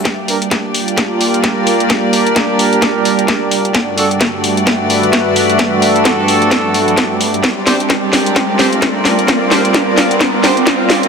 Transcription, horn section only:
0, 0, Header, 1, 2, 480
1, 0, Start_track
1, 0, Tempo, 461538
1, 55, Time_signature, 4, 2, 24, 8
1, 11525, End_track
2, 0, Start_track
2, 0, Title_t, "Horn section"
2, 0, Program_c, 0, 61
2, 294, Note_on_c, 0, 67, 77
2, 295, Note_on_c, 0, 62, 82
2, 295, Note_on_c, 0, 70, 94
2, 392, Note_off_c, 0, 62, 0
2, 392, Note_off_c, 0, 67, 0
2, 392, Note_off_c, 0, 70, 0
2, 2214, Note_on_c, 0, 62, 97
2, 2214, Note_on_c, 0, 67, 85
2, 2214, Note_on_c, 0, 70, 100
2, 3883, Note_off_c, 0, 62, 0
2, 3883, Note_off_c, 0, 67, 0
2, 3883, Note_off_c, 0, 70, 0
2, 4135, Note_on_c, 0, 62, 84
2, 4135, Note_on_c, 0, 66, 76
2, 4135, Note_on_c, 0, 69, 94
2, 4232, Note_off_c, 0, 62, 0
2, 4232, Note_off_c, 0, 66, 0
2, 4232, Note_off_c, 0, 69, 0
2, 6055, Note_on_c, 0, 62, 97
2, 6055, Note_on_c, 0, 66, 89
2, 6055, Note_on_c, 0, 69, 104
2, 7475, Note_off_c, 0, 62, 0
2, 7475, Note_off_c, 0, 66, 0
2, 7475, Note_off_c, 0, 69, 0
2, 7974, Note_on_c, 0, 62, 76
2, 7975, Note_on_c, 0, 67, 68
2, 7975, Note_on_c, 0, 72, 83
2, 8072, Note_off_c, 0, 62, 0
2, 8072, Note_off_c, 0, 67, 0
2, 8072, Note_off_c, 0, 72, 0
2, 8935, Note_on_c, 0, 62, 82
2, 8935, Note_on_c, 0, 67, 77
2, 8935, Note_on_c, 0, 72, 94
2, 9032, Note_off_c, 0, 62, 0
2, 9032, Note_off_c, 0, 67, 0
2, 9032, Note_off_c, 0, 72, 0
2, 9894, Note_on_c, 0, 62, 83
2, 9894, Note_on_c, 0, 67, 73
2, 9894, Note_on_c, 0, 72, 92
2, 9991, Note_off_c, 0, 62, 0
2, 9992, Note_off_c, 0, 67, 0
2, 9992, Note_off_c, 0, 72, 0
2, 10854, Note_on_c, 0, 62, 85
2, 10854, Note_on_c, 0, 67, 80
2, 10854, Note_on_c, 0, 72, 94
2, 10951, Note_off_c, 0, 67, 0
2, 10951, Note_off_c, 0, 72, 0
2, 10952, Note_off_c, 0, 62, 0
2, 11525, End_track
0, 0, End_of_file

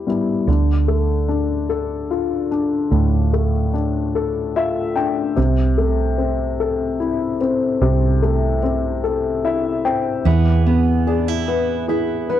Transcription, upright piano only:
0, 0, Header, 1, 2, 480
1, 0, Start_track
1, 0, Tempo, 815217
1, 281, Time_signature, 6, 3, 24, 8
1, 7300, End_track
2, 0, Start_track
2, 0, Title_t, "Upright piano"
2, 0, Program_c, 0, 0
2, 0, Control_c, 0, 64, 127
2, 0, Note_on_c, 0, 55, 39
2, 0, Note_on_c, 0, 59, 39
2, 0, Note_on_c, 0, 64, 45
2, 0, Note_on_c, 0, 67, 66
2, 40, Note_off_c, 0, 55, 0
2, 40, Note_off_c, 0, 59, 0
2, 40, Note_on_c, 0, 55, 36
2, 40, Note_on_c, 0, 59, 32
2, 46, Note_off_c, 0, 64, 0
2, 46, Note_on_c, 0, 64, 40
2, 257, Note_off_c, 0, 55, 0
2, 257, Note_off_c, 0, 59, 0
2, 260, Note_off_c, 0, 64, 0
2, 282, Note_on_c, 0, 50, 54
2, 288, Note_off_c, 0, 67, 0
2, 288, Control_c, 0, 64, 0
2, 408, Control_c, 0, 64, 127
2, 518, Note_on_c, 0, 57, 46
2, 756, Note_on_c, 0, 62, 43
2, 997, Note_on_c, 0, 69, 51
2, 1241, Note_on_c, 0, 65, 48
2, 1456, Note_off_c, 0, 57, 0
2, 1472, Note_off_c, 0, 62, 0
2, 1480, Note_on_c, 0, 62, 44
2, 1698, Note_off_c, 0, 50, 0
2, 1716, Note_on_c, 0, 45, 54
2, 1936, Note_off_c, 0, 69, 0
2, 1963, Note_on_c, 0, 57, 46
2, 2178, Note_off_c, 0, 65, 0
2, 2191, Note_off_c, 0, 62, 0
2, 2200, Note_on_c, 0, 62, 44
2, 2445, Note_on_c, 0, 69, 52
2, 2686, Note_on_c, 0, 76, 63
2, 2687, Note_on_c, 0, 65, 47
2, 2898, Note_off_c, 0, 57, 0
2, 2907, Note_off_c, 0, 76, 0
2, 2910, Note_off_c, 0, 62, 0
2, 2917, Note_on_c, 0, 79, 59
2, 2919, Note_on_c, 0, 62, 46
2, 3135, Note_off_c, 0, 45, 0
2, 3141, Note_off_c, 0, 69, 0
2, 3142, Note_off_c, 0, 79, 0
2, 3149, Note_off_c, 0, 65, 0
2, 3153, Note_off_c, 0, 62, 0
2, 3158, Note_on_c, 0, 48, 58
2, 3170, Control_c, 0, 64, 0
2, 3264, Control_c, 0, 64, 127
2, 3401, Note_on_c, 0, 57, 46
2, 3640, Note_on_c, 0, 60, 46
2, 3886, Note_on_c, 0, 69, 51
2, 4121, Note_on_c, 0, 64, 53
2, 4337, Note_off_c, 0, 57, 0
2, 4354, Note_off_c, 0, 60, 0
2, 4363, Note_on_c, 0, 60, 47
2, 4575, Note_off_c, 0, 48, 0
2, 4602, Note_on_c, 0, 48, 61
2, 4819, Note_off_c, 0, 69, 0
2, 4842, Note_on_c, 0, 57, 47
2, 5057, Note_off_c, 0, 64, 0
2, 5073, Note_off_c, 0, 60, 0
2, 5082, Note_on_c, 0, 60, 51
2, 5321, Note_on_c, 0, 69, 52
2, 5560, Note_on_c, 0, 64, 48
2, 5562, Note_on_c, 0, 76, 61
2, 5777, Note_off_c, 0, 57, 0
2, 5784, Note_off_c, 0, 76, 0
2, 5791, Note_off_c, 0, 60, 0
2, 5799, Note_on_c, 0, 79, 55
2, 5800, Note_on_c, 0, 60, 44
2, 6017, Note_off_c, 0, 48, 0
2, 6018, Note_off_c, 0, 69, 0
2, 6022, Note_off_c, 0, 79, 0
2, 6025, Note_off_c, 0, 64, 0
2, 6032, Note_off_c, 0, 60, 0
2, 6041, Note_on_c, 0, 52, 58
2, 6048, Control_c, 0, 64, 0
2, 6134, Control_c, 0, 64, 127
2, 6280, Note_on_c, 0, 59, 49
2, 6517, Note_on_c, 0, 68, 45
2, 6759, Note_on_c, 0, 71, 54
2, 6987, Note_off_c, 0, 68, 0
2, 6996, Note_on_c, 0, 68, 51
2, 7215, Note_off_c, 0, 59, 0
2, 7230, Note_off_c, 0, 71, 0
2, 7238, Note_on_c, 0, 71, 50
2, 7300, Note_off_c, 0, 52, 0
2, 7300, Note_off_c, 0, 68, 0
2, 7300, Note_off_c, 0, 71, 0
2, 7300, End_track
0, 0, End_of_file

